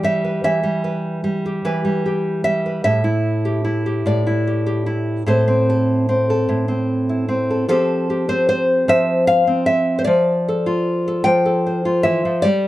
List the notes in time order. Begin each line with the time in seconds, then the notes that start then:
Already playing: E3 G4 D5
0.03 G3 E5
0.24 B4
0.44 E3 E5
0.63 G3
0.84 B4
1.24 G3
1.46 G4
1.65 E3 B4
1.85 G3
2.06 G4
2.44 G3 E5
2.66 B4
2.84 A2 E5
3.04 E4
3.45 G4
3.65 E4
3.86 G4
4.06 A2 D5
4.27 E4
4.47 G4
4.66 G4
4.86 E4
5.26 A2 C4 A4 C5
5.48 C4
5.70 A4
6.09 C4
6.30 A4
6.49 A2
6.68 C4
7.09 E4
7.29 C4
7.51 A4
7.69 F3 C4 G4 A4
8.10 G4
8.29 C4 C5
8.49 C5
8.88 F3 E5
9.27 F5
9.47 C4
9.66 E5
9.99 C5
10.05 F3 D5
10.49 A4
10.66 F4
11.08 A4
11.24 F3 G5
11.46 A4
11.67 C5
11.85 F4
12.03 E3 E5
12.25 F3
12.42 G3 D5